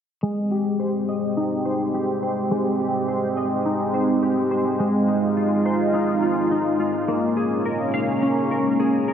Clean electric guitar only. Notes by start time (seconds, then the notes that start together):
0.23 G#3
0.51 G4
0.80 C5
1.09 D#5
1.37 D#4
1.65 C5
1.94 G4
2.23 C5
2.51 G#3
2.80 G4
3.08 C5
3.37 D#5
3.66 D#4
3.94 C5
4.23 G4
4.51 C5
4.80 G#3
5.08 D#4
5.37 F4
5.66 C5
5.94 D#4
6.22 F4
6.51 D#4
6.80 F4
7.08 A#3
7.37 G#4
7.65 A#4
7.94 F5
8.23 C#4
8.51 A#4
8.80 G#4
9.08 A#4